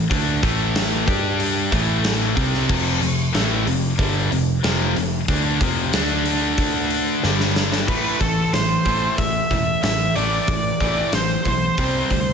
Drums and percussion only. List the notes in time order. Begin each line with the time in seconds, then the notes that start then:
0.11 kick, open hi-hat
0.43 kick, open hi-hat
0.75 snare, open hi-hat
1.08 kick, open hi-hat
1.40 open hi-hat
1.72 kick, open hi-hat
2.04 snare, open hi-hat
2.37 kick, open hi-hat
2.54 snare
2.69 kick, crash
3.02 open hi-hat
3.34 snare, open hi-hat
3.67 open hi-hat
3.99 kick, open hi-hat
4.32 open hi-hat
4.64 snare, open hi-hat
4.96 open hi-hat
5.28 kick, open hi-hat
5.61 kick, open hi-hat
5.93 snare, open hi-hat
6.25 open hi-hat
6.58 kick, open hi-hat
6.90 open hi-hat
7.23 snare
7.40 snare
7.56 snare
7.72 snare
7.88 kick, crash
8.21 kick, open hi-hat
8.53 snare, open hi-hat
8.85 kick, open hi-hat
9.18 kick, open hi-hat
9.51 kick, open hi-hat
9.83 snare, open hi-hat
10.16 open hi-hat
10.48 kick, open hi-hat
10.80 kick, open hi-hat
11.12 snare, open hi-hat
11.45 kick, open hi-hat
11.77 kick, open hi-hat
12.10 kick, open hi-hat